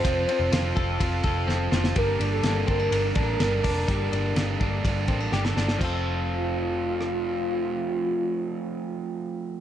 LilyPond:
<<
  \new Staff \with { instrumentName = "Soft synth lead" } { \time 4/4 \key f \major \tempo 4 = 125 c''2. r4 | bes'8. a'8. bes'2~ bes'8~ | bes'2. r4 | f'1~ |
f'1 | }
  \new Staff \with { instrumentName = "Clean electric guitar" } { \time 4/4 \key f \major <c' f' a'>8 c'8 f'8 a'8 f'8 a'8 c'8 f'8 | g8 d'8 bes8 c'16 d'8. d'4 d'8 | g8 d'8 bes8 d'4 c'16 d'16 g'16 a'16 d'8 | <f c' f' a'>1~ |
<f c' f' a'>1 | }
  \new Staff \with { instrumentName = "Overdriven electric guitar" } { \time 4/4 \key f \major <f c' f' a'>8 <c' f' a'>8 <f c' f' a'>8 <c' f' a'>8 <f c' f' a'>8 <c' f' a'>8 <f c' f' a'>8 <c' f' a'>8 | <g bes d' a'>8 <bes d' a'>8 <g bes d' a'>8 <bes d' a'>8 <g bes d' a'>8 <bes d' a'>8 <g bes d' a'>8 <bes d' a'>8 | <g bes d' a'>8 <bes d' a'>8 <g bes d' a'>8 <bes d' a'>8 <g bes d' a'>8 <bes d' a'>8 <g bes d' a'>8 <bes d' a'>8 | <f a c' f'>1~ |
<f a c' f'>1 | }
  \new Staff \with { instrumentName = "Picked electric bass" } { \clef bass \time 4/4 \key f \major f,,8 r16 f,,16 f,,8 f,,8 f,,8 f,,8 f,,8 f,,8 | g,,8 g,,8 g,,8 g,,8 g,,8 a,,8 g,,8 f,,8 | g,,8 g,,8 g,,8 g,,8 g,,8 a,,8 g,,8 g,,8 | f,,1~ |
f,,1 | }
  \new DrumStaff \with { instrumentName = "Drums" } \drummode { \time 4/4 <hhp bd cymr>8 cymr8 <cymr sn>8 <bd cymr>8 <bd cymr>8 <bd cymr>8 sn8 sn16 sn16 | <bd cymr>8 cymr8 <cymr sn>8 <bd cymr>8 cymr8 <bd cymr>8 <cymr sn>8 <hho bd cymr>8 | <hhp bd cymr>8 cymr8 <cymr sn>8 <bd cymr>8 <bd cymr>8 <bd cymr>8 sn16 sn16 sn16 sn16 | <cymc bd>4 r4 r8 ss8 r4 |
r4 r4 r4 r4 | }
>>